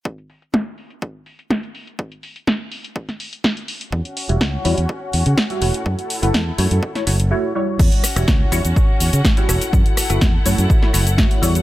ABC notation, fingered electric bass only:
X:1
M:4/4
L:1/16
Q:1/4=124
K:Edor
V:1 name="Fingered electric bass" clef=bass
z16 | z16 | E,, z2 E,,, C,, z E,, E,, z2 E,, C, z2 E,,, z | F,, z2 F,,, E,, z F,, F,, z2 F,,,2 z4 |
E,, z2 E,,, C,, z E,, E,, z2 E,, C, z2 E,,, z | F,, z2 F,,, E,, z F,, F,, z2 F,,,2 z2 E,, z |]